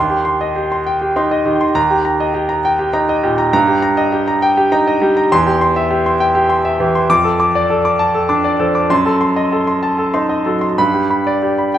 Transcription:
0.00 1.72 D#2 medium
0.00 0.20 C6 medium
0.10 0.34 G4 medium
0.25 0.49 C6 medium
0.41 0.65 D#5 medium
0.56 0.80 G4 medium
0.72 0.96 C6 medium
0.87 1.10 G5 medium
1.01 1.25 G4 medium
1.16 1.64 D#4 medium
1.16 1.40 C6 medium
1.31 1.55 D#5 medium
1.45 1.76 D#3 medium
1.45 1.70 G4 medium
1.61 1.76 C6 medium
1.75 3.49 D#2 medium
1.75 1.99 A#5 medium
1.90 2.15 G4 medium
2.05 2.29 A#5 medium
2.20 2.44 D#5 medium
2.34 2.58 G4 medium
2.49 2.73 A#5 medium
2.65 2.88 G5 medium
2.79 3.03 G4 medium
2.93 3.41 D#4 medium
2.93 3.18 A#5 medium
3.09 3.33 D#5 medium
3.23 3.54 A#2 medium
3.23 3.47 G4 medium
3.38 3.52 A#5 medium
3.53 5.27 G2 medium
3.53 3.77 A#5 medium
3.67 3.92 G4 medium
3.82 4.07 A#5 medium
3.97 4.21 D#5 medium
4.12 4.36 G4 medium
4.28 4.51 A#5 medium
4.42 4.66 G5 medium
4.57 4.81 G4 medium
4.72 5.19 D#4 medium
4.72 4.96 A#5 medium
4.87 5.11 D#5 medium
5.01 5.31 G3 medium
5.01 5.25 G4 medium
5.17 5.31 A#5 medium
5.32 7.05 E2 medium
5.32 5.55 C6 medium
5.47 5.70 G4 medium
5.61 5.85 C6 medium
5.76 5.99 E5 medium
5.91 6.14 G4 medium
6.06 6.29 C6 medium
6.20 6.43 G5 medium
6.35 6.58 G4 medium
6.50 6.73 C6 medium
6.65 6.88 E5 medium
6.80 7.10 E3 medium
6.80 7.04 G4 medium
6.95 7.10 C6 medium
7.10 8.86 F2 medium
7.10 7.34 D6 medium
7.24 7.48 A4 medium
7.40 7.64 D6 medium
7.55 7.79 D5 medium
7.70 7.94 A4 medium
7.85 8.09 D6 medium
7.99 8.23 A5 medium
8.14 8.39 A4 medium
8.29 8.78 D4 medium
8.29 8.53 D6 medium
8.44 8.69 D5 medium
8.60 8.90 F3 medium
8.60 8.84 A4 medium
8.75 8.90 D6 medium
8.90 10.74 F#2 medium
8.90 9.15 C6 medium
9.06 9.30 A4 medium
9.21 9.45 C6 medium
9.36 9.61 D#5 medium
9.52 9.76 A4 medium
9.67 9.92 C6 medium
9.83 10.08 A5 medium
9.98 10.24 A4 medium
10.14 10.66 D#4 medium
10.14 10.39 C6 medium
10.29 10.55 D#5 medium
10.46 10.78 F#3 soft
10.46 10.72 A4 medium
10.61 10.78 C6 medium
10.78 11.78 G2 medium
10.78 11.04 B5 medium
10.94 11.20 G4 medium
11.10 11.36 B5 medium
11.27 11.52 D5 medium
11.43 11.68 G4 medium
11.58 11.78 B5 soft
11.74 11.78 G5 medium

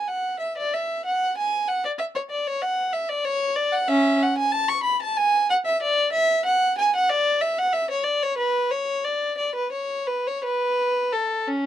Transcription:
0.00 0.11 G#5 medium
0.08 0.41 F#5 medium
0.40 0.57 E5 medium
0.57 0.73 D5 medium
0.73 1.05 E5 medium
1.05 1.36 F#5 medium
1.37 1.68 G#5 medium
1.68 1.84 F#5 medium
1.85 1.91 D5 medium
1.98 2.05 E5 medium
2.15 2.21 C#5 medium
2.30 2.46 D5 medium
2.47 2.62 C#5 medium
2.62 2.93 F#5 medium
2.93 3.09 E5 medium
3.09 3.25 D5 medium
3.24 3.56 C#5 loud
3.56 3.72 D5 loud
3.73 3.89 F#5 medium
3.88 4.18 C#4 medium
3.88 4.20 E5 loud
4.22 4.38 F#5 medium
4.38 4.53 G#5 loud
4.52 4.69 A5 loud
4.68 4.85 C#6 loud
4.83 5.00 B5 medium
5.02 5.17 A5 loud
5.17 5.49 G#5 loud
5.50 5.56 F#5 loud
5.66 5.81 E5 loud
5.82 6.13 D5 loud
6.12 6.44 E5 loud
6.45 6.77 F#5 loud
6.78 6.93 G#5 loud
6.96 7.10 F#5 loud
7.09 7.42 D5 loud
7.41 7.58 E5 medium
7.58 7.74 F#5 loud
7.73 7.90 E5 loud
7.91 8.06 C#5 medium
8.03 8.21 D5 loud
8.23 8.39 C#5 loud
8.38 8.70 B4 loud
8.71 9.04 C#5 loud
9.04 9.36 D5 medium
9.37 9.54 D5 medium
9.55 9.72 B4 medium
9.72 10.06 C#5 medium
10.07 10.24 B4 medium
10.27 10.43 C#5 medium
10.44 11.11 B4 loud
11.12 11.46 A4 medium
11.47 11.66 C#4 medium

